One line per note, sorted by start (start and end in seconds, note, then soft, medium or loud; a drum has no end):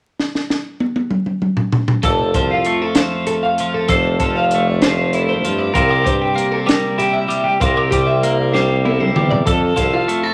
0.19 snare medium
0.35 snare medium
0.50 snare medium
0.80 high tom medium
0.96 high tom medium
1.11 mid tom medium
1.26 mid tom medium
1.42 mid tom medium
1.57 floor tom medium
1.72 floor tom loud
1.88 floor tom loud
2.03 2.31 F1 medium
2.03 3.87 F2 medium
2.03 2.35 A4 medium
2.03 3.86 A4 medium
2.03 kick medium
2.03 closed hi-hat medium
2.34 2.62 C2 medium
2.34 2.96 F3 medium
2.34 2.51 C5 medium
2.34 kick medium
2.34 closed hi-hat medium
2.51 2.82 F4 medium
2.65 4.52 A3 soft
2.65 closed hi-hat medium
2.82 2.96 A4 medium
2.95 3.59 F3 medium
2.95 3.26 C5 medium
2.95 snare loud
2.95 closed hi-hat medium
3.27 3.43 A4 medium
3.27 closed hi-hat medium
3.43 3.74 F5 medium
3.58 4.20 F3 medium
3.58 closed hi-hat medium
3.74 3.89 A4 medium
3.88 4.17 F1 medium
3.88 5.75 F2 medium
3.88 5.71 A4 medium
3.88 4.19 C5 medium
3.88 kick medium
3.88 closed hi-hat medium
4.20 5.46 F1 medium
4.20 4.82 F3 medium
4.20 4.36 A4 medium
4.20 kick medium
4.20 closed hi-hat medium
4.36 4.68 F5 medium
4.51 5.77 A3 medium
4.51 closed hi-hat medium
4.68 4.83 D5 medium
4.82 5.43 F3 medium
4.82 5.13 C5 medium
4.82 snare loud
4.82 closed hi-hat medium
5.13 5.78 E4 soft
5.13 5.29 A4 medium
5.13 closed hi-hat soft
5.29 5.58 C5 medium
5.44 5.71 G2 medium
5.44 5.75 F3 medium
5.44 closed hi-hat medium
5.58 5.75 D5 medium
5.74 6.03 C2 medium
5.74 7.60 C3 medium
5.74 5.90 F4 medium
5.74 6.05 A#4 medium
5.74 kick medium
5.74 closed hi-hat medium
5.90 7.61 G4 soft
6.04 6.34 G2 medium
6.04 6.66 G3 medium
6.04 6.21 C5 medium
6.04 kick medium
6.04 closed hi-hat soft
6.22 6.52 G4 medium
6.36 7.56 A#3 medium
6.36 closed hi-hat medium
6.52 6.67 A4 medium
6.66 7.27 G3 medium
6.66 6.98 A#4 medium
6.66 snare loud
6.66 closed hi-hat medium
6.98 7.64 E4 medium
6.98 7.14 G4 medium
6.98 closed hi-hat medium
7.13 7.45 E5 medium
7.28 7.56 G3 medium
7.28 closed hi-hat medium
7.44 7.60 G4 medium
7.60 7.88 C2 medium
7.60 9.47 C3 medium
7.60 7.77 F4 medium
7.60 7.90 A#4 medium
7.60 kick medium
7.60 closed hi-hat medium
7.77 9.47 G4 soft
7.91 9.18 C2 medium
7.91 8.53 G3 medium
7.91 8.07 G4 medium
7.91 kick medium
7.91 closed hi-hat medium
8.07 8.38 E5 medium
8.23 9.43 A#3 medium
8.23 closed hi-hat medium
8.38 8.54 D5 medium
8.53 9.15 G3 medium
8.53 8.85 C5 medium
8.53 snare medium
8.85 9.50 E4 soft
8.85 9.00 A4 medium
8.85 high tom medium
9.00 9.31 C5 medium
9.00 mid tom medium
9.16 9.43 E2 medium
9.16 9.43 G3 medium
9.16 mid tom medium
9.31 9.46 D5 medium
9.31 floor tom medium
9.46 10.34 F2 medium
9.46 9.74 F2 medium
9.46 9.77 A4 medium
9.46 10.34 A4 medium
9.46 kick medium
9.46 closed hi-hat medium
9.76 10.05 C2 medium
9.76 10.34 F3 medium
9.76 9.93 C5 medium
9.76 kick medium
9.76 closed hi-hat medium
9.93 10.23 F4 medium
10.08 10.34 A3 medium
10.08 closed hi-hat medium
10.23 10.34 A4 medium